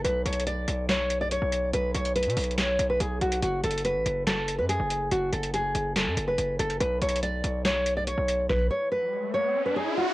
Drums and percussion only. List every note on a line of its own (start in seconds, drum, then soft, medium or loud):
0.04 closed hi-hat medium
0.26 closed hi-hat medium
0.33 closed hi-hat medium
0.40 closed hi-hat medium
0.47 closed hi-hat medium
0.68 closed hi-hat medium
0.89 snare loud
0.89 clap medium
0.89 closed hi-hat medium
1.10 closed hi-hat medium
1.31 closed hi-hat medium
1.52 closed hi-hat medium
1.73 closed hi-hat medium
1.94 closed hi-hat medium
2.05 closed hi-hat soft
2.16 closed hi-hat medium
2.23 closed hi-hat medium
2.30 closed hi-hat soft
2.37 closed hi-hat soft
2.37 open hi-hat medium
2.44 closed hi-hat soft
2.51 closed hi-hat soft
2.58 snare loud
2.58 clap medium
2.58 closed hi-hat medium
2.79 closed hi-hat medium
3.00 closed hi-hat medium
3.21 closed hi-hat medium
3.32 closed hi-hat medium
3.42 closed hi-hat medium
3.64 closed hi-hat medium
3.71 closed hi-hat medium
3.78 closed hi-hat medium
3.85 closed hi-hat medium
4.06 closed hi-hat medium
4.27 snare loud
4.27 clap medium
4.27 closed hi-hat medium
4.48 closed hi-hat medium
4.69 closed hi-hat medium
4.90 closed hi-hat medium
5.11 closed hi-hat medium
5.33 closed hi-hat medium
5.43 closed hi-hat medium
5.54 closed hi-hat medium
5.75 closed hi-hat medium
5.96 snare loud
5.96 clap medium
5.96 closed hi-hat medium
6.17 closed hi-hat medium
6.38 closed hi-hat medium
6.59 closed hi-hat medium
6.70 closed hi-hat soft
6.80 closed hi-hat medium
7.02 closed hi-hat medium
7.09 closed hi-hat medium
7.16 closed hi-hat medium
7.23 closed hi-hat medium
7.44 closed hi-hat medium
7.65 snare loud
7.65 clap medium
7.65 closed hi-hat medium
7.86 closed hi-hat medium
8.07 closed hi-hat medium
8.28 closed hi-hat medium
8.49 kick loud
8.49 snare medium